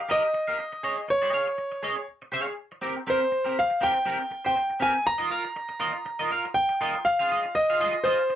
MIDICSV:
0, 0, Header, 1, 4, 480
1, 0, Start_track
1, 0, Tempo, 495868
1, 1055, Time_signature, 4, 2, 24, 8
1, 8087, End_track
2, 0, Start_track
2, 0, Title_t, "Grand piano"
2, 0, Program_c, 0, 0
2, 0, Note_on_c, 0, 77, 95
2, 107, Note_on_c, 0, 75, 99
2, 111, Note_off_c, 0, 77, 0
2, 1022, Note_off_c, 0, 75, 0
2, 1067, Note_on_c, 0, 73, 84
2, 1983, Note_off_c, 0, 73, 0
2, 2998, Note_on_c, 0, 72, 85
2, 3474, Note_on_c, 0, 77, 91
2, 3482, Note_off_c, 0, 72, 0
2, 3710, Note_on_c, 0, 79, 108
2, 3713, Note_off_c, 0, 77, 0
2, 4304, Note_off_c, 0, 79, 0
2, 4319, Note_on_c, 0, 79, 89
2, 4669, Note_on_c, 0, 80, 95
2, 4672, Note_off_c, 0, 79, 0
2, 4904, Note_on_c, 0, 82, 97
2, 4911, Note_off_c, 0, 80, 0
2, 6302, Note_off_c, 0, 82, 0
2, 6334, Note_on_c, 0, 79, 89
2, 6823, Note_on_c, 0, 77, 91
2, 6830, Note_off_c, 0, 79, 0
2, 7308, Note_on_c, 0, 75, 92
2, 7314, Note_off_c, 0, 77, 0
2, 7779, Note_on_c, 0, 72, 84
2, 7796, Note_off_c, 0, 75, 0
2, 8087, Note_off_c, 0, 72, 0
2, 8087, End_track
3, 0, Start_track
3, 0, Title_t, "Clean electric guitar"
3, 0, Program_c, 1, 27
3, 83, Note_on_c, 1, 67, 77
3, 90, Note_on_c, 1, 70, 87
3, 94, Note_on_c, 1, 75, 87
3, 215, Note_off_c, 1, 75, 0
3, 227, Note_off_c, 1, 70, 0
3, 250, Note_off_c, 1, 67, 0
3, 460, Note_on_c, 1, 77, 62
3, 466, Note_on_c, 1, 70, 54
3, 473, Note_on_c, 1, 67, 51
3, 555, Note_off_c, 1, 67, 0
3, 559, Note_off_c, 1, 70, 0
3, 568, Note_off_c, 1, 77, 0
3, 806, Note_on_c, 1, 68, 65
3, 813, Note_on_c, 1, 73, 76
3, 813, Note_on_c, 1, 75, 77
3, 933, Note_off_c, 1, 75, 0
3, 937, Note_off_c, 1, 73, 0
3, 971, Note_off_c, 1, 68, 0
3, 1179, Note_on_c, 1, 75, 72
3, 1184, Note_on_c, 1, 73, 58
3, 1186, Note_on_c, 1, 68, 66
3, 1276, Note_off_c, 1, 68, 0
3, 1280, Note_off_c, 1, 73, 0
3, 1288, Note_on_c, 1, 68, 61
3, 1292, Note_off_c, 1, 75, 0
3, 1292, Note_on_c, 1, 73, 67
3, 1296, Note_on_c, 1, 77, 72
3, 1422, Note_off_c, 1, 73, 0
3, 1422, Note_off_c, 1, 77, 0
3, 1423, Note_off_c, 1, 68, 0
3, 1768, Note_on_c, 1, 68, 82
3, 1773, Note_on_c, 1, 73, 86
3, 1781, Note_on_c, 1, 75, 101
3, 1892, Note_off_c, 1, 75, 0
3, 1896, Note_off_c, 1, 73, 0
3, 1933, Note_off_c, 1, 68, 0
3, 2244, Note_on_c, 1, 68, 80
3, 2253, Note_on_c, 1, 73, 85
3, 2261, Note_on_c, 1, 77, 79
3, 2383, Note_off_c, 1, 77, 0
3, 2389, Note_off_c, 1, 73, 0
3, 2450, Note_off_c, 1, 68, 0
3, 2725, Note_on_c, 1, 60, 75
3, 2729, Note_on_c, 1, 67, 81
3, 2736, Note_on_c, 1, 70, 79
3, 2856, Note_off_c, 1, 70, 0
3, 2864, Note_off_c, 1, 67, 0
3, 2892, Note_off_c, 1, 60, 0
3, 2969, Note_on_c, 1, 60, 74
3, 2976, Note_on_c, 1, 67, 78
3, 2979, Note_on_c, 1, 70, 93
3, 3096, Note_off_c, 1, 70, 0
3, 3104, Note_off_c, 1, 67, 0
3, 3134, Note_off_c, 1, 60, 0
3, 3334, Note_on_c, 1, 70, 56
3, 3343, Note_on_c, 1, 67, 60
3, 3348, Note_on_c, 1, 60, 54
3, 3446, Note_off_c, 1, 70, 0
3, 3451, Note_off_c, 1, 67, 0
3, 3453, Note_off_c, 1, 60, 0
3, 3686, Note_on_c, 1, 60, 79
3, 3693, Note_on_c, 1, 67, 81
3, 3695, Note_on_c, 1, 70, 92
3, 3799, Note_off_c, 1, 70, 0
3, 3808, Note_off_c, 1, 67, 0
3, 3853, Note_off_c, 1, 60, 0
3, 3925, Note_on_c, 1, 60, 87
3, 3929, Note_on_c, 1, 67, 82
3, 3935, Note_on_c, 1, 70, 94
3, 4049, Note_off_c, 1, 70, 0
3, 4051, Note_off_c, 1, 67, 0
3, 4092, Note_off_c, 1, 60, 0
3, 4303, Note_on_c, 1, 72, 52
3, 4306, Note_on_c, 1, 67, 52
3, 4308, Note_on_c, 1, 60, 45
3, 4402, Note_off_c, 1, 60, 0
3, 4410, Note_off_c, 1, 67, 0
3, 4411, Note_off_c, 1, 72, 0
3, 4643, Note_on_c, 1, 60, 92
3, 4645, Note_on_c, 1, 67, 86
3, 4652, Note_on_c, 1, 70, 91
3, 4773, Note_off_c, 1, 70, 0
3, 4776, Note_off_c, 1, 67, 0
3, 4812, Note_off_c, 1, 60, 0
3, 5017, Note_on_c, 1, 75, 83
3, 5025, Note_on_c, 1, 70, 67
3, 5028, Note_on_c, 1, 65, 66
3, 5122, Note_off_c, 1, 65, 0
3, 5130, Note_off_c, 1, 70, 0
3, 5133, Note_on_c, 1, 65, 65
3, 5141, Note_off_c, 1, 75, 0
3, 5142, Note_on_c, 1, 70, 64
3, 5145, Note_on_c, 1, 77, 72
3, 5266, Note_off_c, 1, 70, 0
3, 5267, Note_off_c, 1, 65, 0
3, 5268, Note_off_c, 1, 77, 0
3, 5611, Note_on_c, 1, 65, 79
3, 5613, Note_on_c, 1, 70, 91
3, 5620, Note_on_c, 1, 75, 90
3, 5728, Note_off_c, 1, 75, 0
3, 5736, Note_off_c, 1, 70, 0
3, 5775, Note_off_c, 1, 65, 0
3, 5995, Note_on_c, 1, 75, 80
3, 5999, Note_on_c, 1, 70, 69
3, 6006, Note_on_c, 1, 65, 66
3, 6092, Note_off_c, 1, 65, 0
3, 6100, Note_off_c, 1, 70, 0
3, 6104, Note_on_c, 1, 65, 60
3, 6111, Note_on_c, 1, 70, 71
3, 6117, Note_off_c, 1, 75, 0
3, 6121, Note_on_c, 1, 77, 79
3, 6232, Note_off_c, 1, 65, 0
3, 6236, Note_off_c, 1, 70, 0
3, 6241, Note_off_c, 1, 77, 0
3, 6589, Note_on_c, 1, 65, 91
3, 6591, Note_on_c, 1, 70, 98
3, 6597, Note_on_c, 1, 75, 98
3, 6717, Note_off_c, 1, 75, 0
3, 6723, Note_off_c, 1, 70, 0
3, 6744, Note_off_c, 1, 65, 0
3, 6963, Note_on_c, 1, 77, 76
3, 6969, Note_on_c, 1, 68, 75
3, 6975, Note_on_c, 1, 65, 70
3, 7063, Note_off_c, 1, 65, 0
3, 7065, Note_off_c, 1, 68, 0
3, 7074, Note_on_c, 1, 65, 65
3, 7077, Note_on_c, 1, 68, 67
3, 7080, Note_off_c, 1, 77, 0
3, 7084, Note_on_c, 1, 75, 69
3, 7197, Note_off_c, 1, 65, 0
3, 7198, Note_off_c, 1, 68, 0
3, 7199, Note_off_c, 1, 75, 0
3, 7451, Note_on_c, 1, 77, 66
3, 7454, Note_on_c, 1, 68, 60
3, 7456, Note_on_c, 1, 65, 58
3, 7538, Note_off_c, 1, 65, 0
3, 7544, Note_off_c, 1, 77, 0
3, 7545, Note_off_c, 1, 68, 0
3, 7550, Note_on_c, 1, 65, 88
3, 7558, Note_on_c, 1, 68, 90
3, 7562, Note_on_c, 1, 75, 110
3, 7678, Note_off_c, 1, 75, 0
3, 7680, Note_off_c, 1, 68, 0
3, 7704, Note_off_c, 1, 65, 0
3, 7786, Note_on_c, 1, 65, 81
3, 7790, Note_on_c, 1, 68, 84
3, 7799, Note_on_c, 1, 75, 94
3, 7917, Note_off_c, 1, 75, 0
3, 7920, Note_off_c, 1, 68, 0
3, 7941, Note_off_c, 1, 65, 0
3, 8087, End_track
4, 0, Start_track
4, 0, Title_t, "Muted clean electric guitar strokes"
4, 226, Note_on_c, 9, 29, 49
4, 323, Note_off_c, 9, 29, 0
4, 326, Note_on_c, 9, 29, 42
4, 422, Note_off_c, 9, 29, 0
4, 567, Note_on_c, 9, 29, 47
4, 663, Note_off_c, 9, 29, 0
4, 701, Note_on_c, 9, 29, 42
4, 798, Note_off_c, 9, 29, 0
4, 945, Note_on_c, 9, 29, 38
4, 1041, Note_off_c, 9, 29, 0
4, 1047, Note_on_c, 9, 29, 43
4, 1143, Note_off_c, 9, 29, 0
4, 1426, Note_on_c, 9, 29, 52
4, 1523, Note_off_c, 9, 29, 0
4, 1530, Note_on_c, 9, 29, 34
4, 1627, Note_off_c, 9, 29, 0
4, 1662, Note_on_c, 9, 29, 41
4, 1758, Note_off_c, 9, 29, 0
4, 1904, Note_on_c, 9, 29, 45
4, 2000, Note_off_c, 9, 29, 0
4, 2148, Note_on_c, 9, 29, 43
4, 2245, Note_off_c, 9, 29, 0
4, 2387, Note_on_c, 9, 29, 46
4, 2484, Note_off_c, 9, 29, 0
4, 2630, Note_on_c, 9, 29, 37
4, 2727, Note_off_c, 9, 29, 0
4, 2867, Note_on_c, 9, 29, 53
4, 2964, Note_off_c, 9, 29, 0
4, 3107, Note_on_c, 9, 29, 47
4, 3204, Note_off_c, 9, 29, 0
4, 3212, Note_on_c, 9, 29, 45
4, 3309, Note_off_c, 9, 29, 0
4, 3581, Note_on_c, 9, 29, 47
4, 3678, Note_off_c, 9, 29, 0
4, 3811, Note_on_c, 9, 29, 44
4, 3908, Note_off_c, 9, 29, 0
4, 4060, Note_on_c, 9, 29, 49
4, 4157, Note_off_c, 9, 29, 0
4, 4169, Note_on_c, 9, 29, 37
4, 4265, Note_off_c, 9, 29, 0
4, 4413, Note_on_c, 9, 29, 45
4, 4510, Note_off_c, 9, 29, 0
4, 4548, Note_on_c, 9, 29, 45
4, 4645, Note_off_c, 9, 29, 0
4, 4785, Note_on_c, 9, 29, 47
4, 4882, Note_off_c, 9, 29, 0
4, 4895, Note_on_c, 9, 29, 44
4, 4992, Note_off_c, 9, 29, 0
4, 5272, Note_on_c, 9, 29, 54
4, 5369, Note_off_c, 9, 29, 0
4, 5381, Note_on_c, 9, 29, 46
4, 5478, Note_off_c, 9, 29, 0
4, 5506, Note_on_c, 9, 29, 51
4, 5602, Note_off_c, 9, 29, 0
4, 5740, Note_on_c, 9, 29, 46
4, 5837, Note_off_c, 9, 29, 0
4, 5860, Note_on_c, 9, 29, 46
4, 5956, Note_off_c, 9, 29, 0
4, 6245, Note_on_c, 9, 29, 57
4, 6342, Note_off_c, 9, 29, 0
4, 6476, Note_on_c, 9, 29, 47
4, 6573, Note_off_c, 9, 29, 0
4, 6728, Note_on_c, 9, 29, 54
4, 6825, Note_off_c, 9, 29, 0
4, 6841, Note_on_c, 9, 29, 38
4, 6938, Note_off_c, 9, 29, 0
4, 7210, Note_on_c, 9, 29, 52
4, 7307, Note_off_c, 9, 29, 0
4, 7317, Note_on_c, 9, 29, 46
4, 7414, Note_off_c, 9, 29, 0
4, 7690, Note_on_c, 9, 29, 52
4, 7787, Note_off_c, 9, 29, 0
4, 7929, Note_on_c, 9, 29, 58
4, 8026, Note_off_c, 9, 29, 0
4, 8030, Note_on_c, 9, 29, 47
4, 8087, Note_off_c, 9, 29, 0
4, 8087, End_track
0, 0, End_of_file